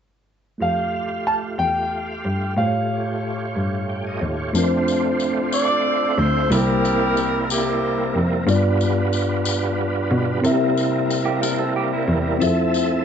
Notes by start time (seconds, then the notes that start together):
0.58 F2 A3 F4 G4 F5
0.62 F5
1.27 A5
1.58 E2 G5
2.25 G2
2.56 A2 A3 F4 G4 C5 F5
2.60 C5
2.65 C#5
3.56 G2
3.89 G5
4.07 D#5
4.21 D#2 C#5
4.53 F2 A3 C4 D4 F4 C5, tambourine
4.58 A#4
4.64 C5
4.88 tambourine
5.20 tambourine
5.52 A4 D5, tambourine
6.18 D2 C5
6.49 C2 C3 G3 A#3 C4 E4 G4 A4 A#4, tambourine
6.53 C5
6.58 A#4
6.85 tambourine
7.17 tambourine
7.50 A#3 E4 G4, tambourine
8.15 F2
8.46 G2 G3 B3 D4 F4 G4 A#4, tambourine
8.50 B4 D5
8.81 tambourine
9.13 tambourine
9.45 tambourine
10.11 B2
10.41 C3 G3 A#3 C4 E4 G4 A#4, tambourine
10.46 E5
10.77 tambourine
11.10 tambourine
11.26 A#3 G4
11.42 D4 A#4, tambourine
11.59 C4 A4
11.76 A#3 G4
11.93 G3 E4
12.08 E2
12.39 F2 F3 A3 C4 E4 F4 G#4 A4 E5, tambourine
12.43 E5
12.49 A4
12.74 tambourine